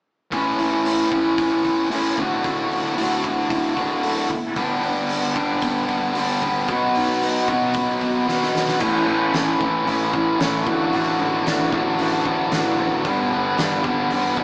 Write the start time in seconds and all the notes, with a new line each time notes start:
0.31 A2 E3 A3 C#4 E4, kick, open hi-hat
0.59 E4, open hi-hat
0.85 C#4, open hi-hat
1.10 A2 E3 A3 C#4 E4, kick, open hi-hat
1.38 C#4, kick, open hi-hat
1.65 E3, kick, open hi-hat
1.90 A2 E3 A3 C#4 E4, open hi-hat
2.17 A2 D3 A3 D4 F#4, kick, open hi-hat
2.44 A2, kick, open hi-hat
2.71 F#4, open hi-hat
2.96 A2 D3 A3 D4 E4 F#4, open hi-hat
3.23 E3, kick, open hi-hat
3.50 E4, kick, open hi-hat
3.76 A2 D3 E3 A3 D4 F#4, kick, open hi-hat
4.03 A3, open hi-hat
4.30 E4, kick, open hi-hat
4.56 G2 D3 G3 B3 D4 G4, kick, open hi-hat
4.83 D4, open hi-hat
5.09 B3, open hi-hat
5.34 G2 D3 G3 B3 D4 G4, kick, open hi-hat
5.62 B3, kick, open hi-hat
5.88 D3, kick, open hi-hat
6.15 G2 D3 G3 B3 D4 G4, open hi-hat
6.42 B3, kick, open hi-hat
6.68 B2 F#3 B3 D#4 F#4, kick, open hi-hat
6.95 D#4, open hi-hat
7.21 B3, open hi-hat
7.48 B2 F#3 B3 D#4 F#4, kick, open hi-hat
7.74 B3, kick, open hi-hat
8.01 B2, kick, open hi-hat
8.27 B2 F#3 B3 D#4 F#4, snare
8.42 snare
8.55 B3, snare
8.68 snare
8.79 A1 A2 E3 A3 C#4 E4, kick, crash
9.07 A1 A2 E3 A3 C#4 E4
9.34 A1 A2 E3 A3 C#4 E4, snare, open hi-hat
9.60 A2 E3 A3 C#4 E4, kick
9.87 A1 A2 E3 A3 C#4 E4, open hi-hat
10.13 A1 A2 E3 A3 C#4 E4, kick
10.40 A1 A2 E3 A3 C#4 E4, snare, open hi-hat
10.66 A1 A2 D3 E3 A3 D4 F#4, kick
10.92 A1 A2 D3 E3 A3 D4 F#4, open hi-hat
11.19 A1 A2 D3 A3 D4 F#4
11.46 A1 A2 D3 E3 A3 D4 F#4, snare, open hi-hat
11.72 A1 A2 D3 A3 D4 F#4, kick
11.98 A1 A2 D3 A3 D4 F#4, open hi-hat
12.25 A1 A2 D3 A3 D4 F#4, kick
12.51 A1 A2 D3 E3 A3 D4 F#4, snare, open hi-hat
12.78 A1 A2 D3 A3 D4 F#4
13.04 G1 G2 D3 G3 B3 D4, kick, open hi-hat
13.31 G1 G2 D3 G3 B3 D4
13.57 G1 G2 D3 G3 B3 D4, snare, open hi-hat
13.83 G2 D3 G3 B3 D4, kick
14.10 G1 G2 D3 G3 B3 D4, open hi-hat
14.36 G1 G2 D3 G3 B3 D4, kick